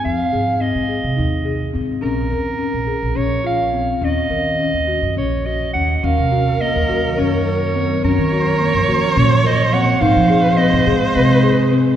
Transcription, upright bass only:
\new Staff \with { instrumentName = "Upright bass" } { \clef bass \time 7/8 \key ees \dorian \tempo 4 = 106 f,16 r16 aes,8. aes,8 c16 ees,4 aes,8 | bes,,8 ees,8 r16 bes,,16 r16 bes,,16 bes,,4. | ees,16 r16 ees8. ees,8 ges,16 bes,,4 ees,8 | ees,16 c4 ees,16 ees,16 r16 ges,4. |
ges,16 ees4 ges,16 ges,16 r16 bes,4. | aes,16 f4 aes,16 aes,16 r16 c4. | }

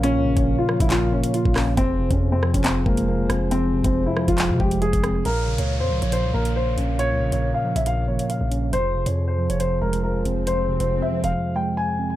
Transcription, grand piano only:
\new Staff \with { instrumentName = "Grand piano" } { \time 4/4 \key bes \dorian \tempo 4 = 138 des'8. des'8 f'8 e'16 f'8 des'8 f'8 r8 | c'8. des'8 c'8 des'16 c'8 bes8 bes8 r8 | c'8. c'8 e'8 f'8. g'8 aes'4 | bes'8. des''8 c''8 des''16 c''8 bes'8 c''8 r8 |
des''8. des''8 f''8 e''16 f''8 des''8 f''8 r8 | c''8. des''8 c''8 des''16 c''8 bes'8 bes'8 r8 | c''8. c''8 e''8 f''8. g''8 aes''4 | }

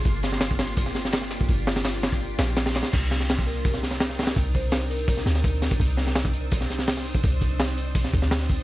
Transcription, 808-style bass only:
\new Staff \with { instrumentName = "808-style bass" } { \clef bass \time 4/4 \key c \minor \tempo 4 = 167 g,,1 | g,,2~ g,,8 bes,,4 r8 | c,1 | c,2~ c,8 d,4 r8 |
c,1 | c,2~ c,8 d,4 r8 | }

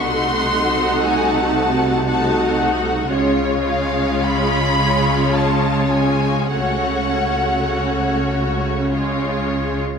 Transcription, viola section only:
\new Staff \with { instrumentName = "Viola section" } { \time 3/4 \key cis \phrygian \tempo 4 = 54 <a ees'>2 <a ees'>4 | <gis cis'>2. | <a cis'>2 <gis cis'>4 | }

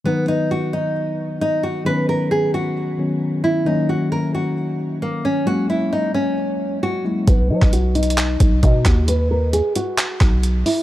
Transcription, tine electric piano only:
\new Staff \with { instrumentName = "Tine electric piano" } { \time 4/4 \key b \major \tempo 4 = 133 <dis fis b dis'>1 | <dis fis b cis'>2~ <dis fis b cis'>8 <dis fis b cis'>4. | <dis fis ais cis'>1 | <fis gis ais cis'>2.~ <fis gis ais cis'>8 <fis gis ais e'>8 |
r1 | r1 | }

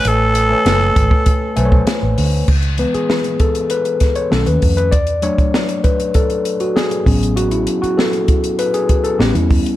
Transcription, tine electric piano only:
<<
  \new Staff \with { instrumentName = "Tine electric piano" } { \time 4/4 \key a \major \tempo 4 = 98 <a b' cis'' gis''>8 r16 <a b' cis'' gis''>4. r16 <a b' c'' cis'' gis''>4~ <a b' c'' cis'' gis''>16 r16 | r8 b'16 gis'8. a'8 b'8. cis''16 a'16 b'8 b'16 | d''8 cis''4 b'8 a'8. fis'16 gis'4 | fis'16 e'8 fis'16 a'4 b'16 gis'8 a'16 g'16 e'8. | }
  \new Staff \with { instrumentName = "Tine electric piano" } { \time 4/4 \key a \major r1 | r8 <e gis b>8 r2 <dis a cis'>4 | r8 <fis a d'>2. <fis b cis'>8~ | <fis b cis'>2. <g b cis'>4 | }
>>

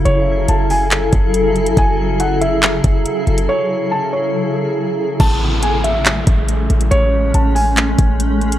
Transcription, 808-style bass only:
\new Staff \with { instrumentName = "808-style bass" } { \clef bass \time 4/4 \key a \major \tempo 4 = 140 fis,,4 fis,,4. fis,,4. | fis,,2~ fis,,8 fis,,8 r8 fis,,8 | r1 | a,,2~ a,,8 a,,4 a,,8 |
a,,4 a,,4. a,,4. | }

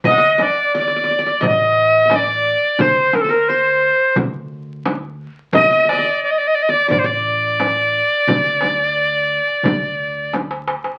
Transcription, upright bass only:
\new Staff \with { instrumentName = "Upright bass" } { \clef bass \time 4/4 \tempo 4 = 88 d,8 r4. a,,2 | d,2 d,2 | d,8 r4. a,,2 | d,2 d,2 | }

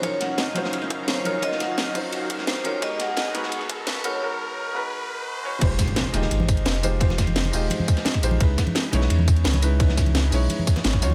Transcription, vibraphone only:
\new Staff \with { instrumentName = "Vibraphone" } { \time 4/4 \key f \phrygian \tempo 4 = 172 des''8 ges''8 ees''8 r4 r16. des''32 c''8 des''8 | ees''8 ges''8 ees''8 r4. c''8 des''8 | ees''8 ges''8 ees''8 r4. ces''8 des''8 | r1 |
r1 | r1 | r1 | r1 | }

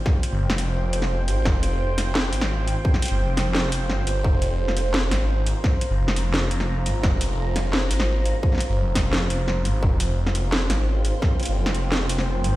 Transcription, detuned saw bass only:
\new Staff \with { instrumentName = "Detuned saw bass" } { \clef bass \time 4/4 \key f \minor \tempo 4 = 172 r8. g,,16 f,,4. f,,8 f,,8 aes,,8 | f,,2~ f,,8 aes,,4~ aes,,16 r16 | r8. g,,16 f,,4. f,,8 g,,8 g,,8 | f,,2~ f,,8 aes,,4~ aes,,16 r16 |
r8. g,,16 f,,4. f,,8 f,,8 aes,,8 | f,,2~ f,,8 aes,,4~ aes,,16 r16 | r8. g,,16 f,,4. f,,8 f,,8 aes,,8 | f,,2~ f,,8 aes,,4~ aes,,16 r16 |
r8. g,,16 f,,4. f,,8 f,,8 aes,,8 | }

